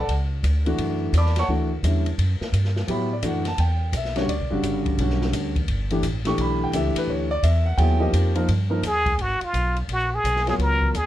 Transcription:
0.00 A4 D5 F#5 A5
0.08 C#2, ride
0.43 D2, hi-hat pedal, ride
0.66 E3 A3 D4 F#4, ride
0.78 F#2, ride
1.13 E2, hi-hat pedal, ride
1.18 D5 A5 B5 D6
1.26 snare
1.36 C#5 F#5 A5 C#6, snare, ride
1.48 D2 E3 A3 D4 F#4
1.83 E2 D3 G3 C#4 E4, hi-hat pedal, ride
2.06 ride
2.18 F#2, ride
2.41 muted upright bass stroke, snare
2.52 G2, hi-hat pedal, ride
2.65 snare
2.76 snare
2.87 A2 F#3 B3 E4 G4 B5, ride
3.13 D5
3.22 F#2 E3 A3 D4 F#4 F#5, hi-hat pedal, ride
3.45 A5, snare, ride
3.58 E2 G5, ride
3.92 B1, hi-hat pedal, ride
3.97 E5
4.05 snare
4.16 D3 G3 C#4 F#4 C#5, snare, ride
4.27 D2 D5, ride
4.39 B1
4.50 G1 C#3 D3 G3 F#4
4.63 G1, hi-hat pedal, ride
4.86 kick, ride
4.98 B1 D3 G3 C#4 F#4, ride
5.10 snare
5.22 snare
5.33 D2, hi-hat pedal, ride
5.56 kick, ride
5.68 G1, ride
5.90 E3 A3 D4 G4, ride
6.03 A1, hi-hat pedal, ride
6.25 E3 A3 D4 G4 C#6, snare, ride
6.38 B1 B5, ride
6.64 G5
6.72 C#2 E3 A3 D4 G4 E5, hi-hat pedal, ride
6.95 B4, muted upright bass stroke, ride
7.07 D2 C#5
7.31 D5
7.43 E2 E5, hi-hat pedal, ride
7.66 F#5
7.77 D#2 F#3 B3 E4 G#4 G5, ride
7.99 F3 A#3 D#4 G4 D#5
8.13 F2, hi-hat pedal, ride
8.35 F3 A#3 D#4 A#4, ride
8.48 G2, ride
8.70 F3 A#3 D#4 A#4
8.83 D#2, hi-hat pedal, ride
8.87 G#4
9.06 kick, ride
9.18 G#1 F#4, ride
9.41 F4, muted upright bass stroke, ride
9.53 B1, hi-hat pedal, ride
9.77 ride
9.88 A#1, ride
9.93 F#4
10.15 G#4
10.24 B1, hi-hat pedal, ride
10.36 snare
10.46 F#3 B3 F4 G#4 A#4 C#5, snare, ride
10.58 C#2, ride
10.62 A#4
10.82 kick
10.94 D#2 G#4, hi-hat pedal, ride

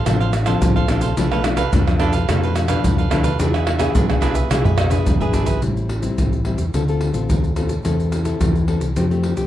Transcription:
0.06 A1 A2 F3 C4 D4 A4 C5 F5, pandeiro, tamborim, maracas, surdo
0.20 A4 C5 F5, pandeiro, maracas
0.33 muted cavaquinho stroke, pandeiro, tamborim, maracas
0.46 F3 C4 D4 A4 C5 F5, pandeiro, tamborim, maracas, surdo
0.62 A1 A2, pandeiro, maracas, surdo
0.76 A4 C5 F5, pandeiro, maracas
0.88 A#1 F3 C4 D4 A4 C5 F5, pandeiro, tamborim, maracas
1.01 A4 C5 F5, pandeiro, maracas
1.17 B1 B2 F3 A3 D4 A4 B4 F5, pandeiro, maracas, surdo
1.32 F3 A3 D4 A4 B4 F5, pandeiro, tamborim, maracas
1.44 F3 A3 D4, muted cavaquinho stroke, pandeiro, tamborim, maracas
1.57 A4 B4 F5, pandeiro, tamborim, maracas, surdo
1.72 F2 B2 F3 A3 D4 A4 B4 F5, pandeiro, maracas, surdo
1.87 F3 A3 D4, pandeiro, tamborim, maracas, surdo
2.00 F2 D4 A4 B4 F5, pandeiro, tamborim
2.13 A4 B4 F5, pandeiro, maracas, surdo
2.28 F2 B2 F3 A3 D4 A4 B4 F5, pandeiro, tamborim, maracas, surdo
2.43 A4 B4 F5, pandeiro, maracas
2.56 muted cavaquinho stroke, pandeiro, tamborim, maracas
2.68 F3 A3 D4 A4 B4 F5, pandeiro, tamborim, maracas, surdo
2.84 F2 B2, pandeiro, maracas, surdo
2.98 A4 B4 F5, pandeiro, maracas
3.10 D2 F3 A3 D4 A4 B4 F5, pandeiro, tamborim, maracas, surdo
3.23 A4 B4 F5, pandeiro, maracas
3.39 E2 E3 B3 D4 G#4 B4 E5, pandeiro, maracas, surdo
3.54 G#4 B4 E5, pandeiro, tamborim, maracas
3.66 muted cavaquinho stroke, pandeiro, tamborim
3.79 B3 D4 G#4 B4 E5, pandeiro, tamborim, maracas, surdo
3.95 B1 B2 D4 G#4 B4 E5, pandeiro, maracas, surdo
4.10 B3 D4 G#4, pandeiro, tamborim, maracas, surdo
4.21 B1 D4 G#4 B4 E5, pandeiro, tamborim, maracas
4.34 G#4 B4 E5, pandeiro, maracas, surdo
4.50 B1 E3 B3 D4 G#4 B4 E5, pandeiro, tamborim, maracas, surdo
4.64 G#4 B4 E5, surdo, pandeiro, maracas
4.77 muted cavaquinho stroke, pandeiro, tamborim, maracas
4.90 B3 D4 G#4 B4 E5, surdo, pandeiro, maracas
5.06 E1 B2, pandeiro, maracas, surdo
5.21 B3 D4 G#4 B4 E5, pandeiro, maracas, surdo
5.33 G#1 D4 G#4 B4 E5, pandeiro, maracas, surdo
5.46 G#4 B4 E5, pandeiro, maracas, surdo
5.62 A1 A2 G3 C4 E4, pandeiro, maracas, surdo
5.77 pandeiro, maracas, surdo
5.89 pandeiro
6.02 G3 C4 E4, pandeiro, maracas, surdo
6.18 A1 E3, pandeiro, maracas, surdo
6.33 pandeiro, maracas
6.45 G3 C4 E4, pandeiro
6.58 E2, pandeiro, maracas, surdo
6.74 D2 D3 C4 F4 A4, pandeiro, maracas, surdo
6.88 C4 F4 A4, pandeiro, maracas
7.01 pandeiro
7.14 A1 C4 F4 A4, pandeiro, maracas, surdo
7.29 D#2 A2, pandeiro, maracas, surdo
7.44 pandeiro, maracas
7.56 C4 F4 A4, pandeiro, maracas
7.69 pandeiro, maracas
7.85 E2 E3 C4 E4 A4, pandeiro, maracas, surdo
8.00 pandeiro, maracas, surdo
8.12 pandeiro, maracas
8.25 C4 E4 A4, pandeiro, maracas, surdo
8.41 E2 E3, pandeiro, maracas, surdo
8.56 pandeiro, maracas
8.68 C4 E4 A4, pandeiro
8.81 C2, pandeiro, maracas, surdo
8.96 F2 F3 A3 C4 G4, pandeiro, maracas, surdo
9.11 A3 C4 G4, pandeiro, maracas
9.23 pandeiro
9.36 C2 A3 C4 G4, pandeiro, maracas, surdo

